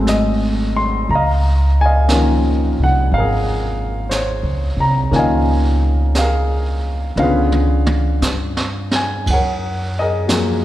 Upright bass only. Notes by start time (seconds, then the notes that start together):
Already playing: G#1
1.09 C#2
2.79 C2
3.12 G#1
4.43 C#2
4.77 C2
5.12 C#2
7.16 C#2
8.21 G2
9.27 F#2